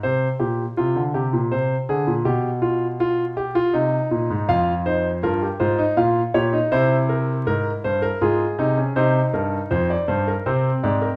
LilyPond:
<<
  \new Staff \with { instrumentName = "Grand piano" } { \time 3/4 \key c \phrygian \tempo 4 = 81 << { r2. | r2. | f''8 c''8 bes'8 c''8 f''8 des''8 | c''8 bes'8 bes'8 c''16 bes'16 aes'4 |
c''8 bes'8 c''16 d''16 c''16 bes'16 c''8 d''16 bes'16 | } \\ { c''8 g'8 f'8 g'8 c''8 aes'8 | g'8 f'8 f'8 g'16 f'16 ees'4 | f'8 ees'8 f'16 g'16 f'16 ees'16 f'8 g'16 ees'16 | e'2 f'8 ees'16 des'16 |
ees'2 c'4 | } >> }
  \new Staff \with { instrumentName = "Grand piano" } { \clef bass \time 3/4 \key c \phrygian c8 bes,8 c16 d16 c16 bes,16 c8 d16 bes,16 | b,2 c8 bes,16 aes,16 | f,4 g,8 aes,8 bes,8 bes,8 | c4 aes,8 g,8 aes,8 c8 |
c8 g,8 f,8 g,8 c8 aes,8 | }
>>